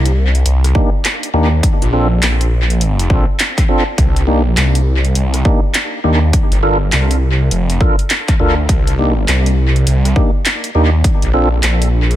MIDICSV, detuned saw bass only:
0, 0, Header, 1, 2, 480
1, 0, Start_track
1, 0, Tempo, 588235
1, 1333, Time_signature, 4, 2, 24, 8
1, 9923, End_track
2, 0, Start_track
2, 0, Title_t, "Detuned saw bass"
2, 0, Program_c, 0, 39
2, 0, Note_on_c, 0, 36, 97
2, 357, Note_off_c, 0, 36, 0
2, 372, Note_on_c, 0, 36, 93
2, 598, Note_off_c, 0, 36, 0
2, 1089, Note_on_c, 0, 39, 95
2, 1317, Note_off_c, 0, 39, 0
2, 1484, Note_on_c, 0, 34, 94
2, 1799, Note_off_c, 0, 34, 0
2, 1814, Note_on_c, 0, 34, 96
2, 2519, Note_off_c, 0, 34, 0
2, 2530, Note_on_c, 0, 34, 94
2, 2657, Note_off_c, 0, 34, 0
2, 3248, Note_on_c, 0, 36, 93
2, 3716, Note_off_c, 0, 36, 0
2, 3728, Note_on_c, 0, 36, 91
2, 4196, Note_off_c, 0, 36, 0
2, 4207, Note_on_c, 0, 36, 90
2, 4435, Note_off_c, 0, 36, 0
2, 4931, Note_on_c, 0, 39, 96
2, 5158, Note_off_c, 0, 39, 0
2, 5314, Note_on_c, 0, 31, 92
2, 5634, Note_off_c, 0, 31, 0
2, 5651, Note_on_c, 0, 36, 95
2, 6118, Note_off_c, 0, 36, 0
2, 6132, Note_on_c, 0, 29, 90
2, 6358, Note_off_c, 0, 29, 0
2, 6854, Note_on_c, 0, 38, 96
2, 7079, Note_off_c, 0, 38, 0
2, 7088, Note_on_c, 0, 36, 88
2, 7556, Note_off_c, 0, 36, 0
2, 7573, Note_on_c, 0, 36, 97
2, 8039, Note_off_c, 0, 36, 0
2, 8052, Note_on_c, 0, 36, 92
2, 8278, Note_off_c, 0, 36, 0
2, 8772, Note_on_c, 0, 39, 102
2, 8998, Note_off_c, 0, 39, 0
2, 9167, Note_on_c, 0, 34, 96
2, 9481, Note_off_c, 0, 34, 0
2, 9493, Note_on_c, 0, 34, 98
2, 9923, Note_off_c, 0, 34, 0
2, 9923, End_track
0, 0, End_of_file